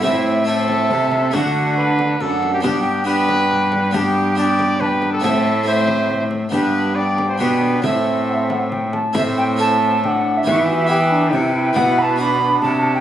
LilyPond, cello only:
\new Staff \with { instrumentName = "Cello" } { \clef bass \time 3/4 \key a \dorian \tempo 4 = 138 a,2 c4 | d2 fis,4 | g,2.~ | g,2. |
a,2. | g,2 b,4 | a,2~ a,8 r8 | a,2. |
e2 c4 | b,2 c4 | }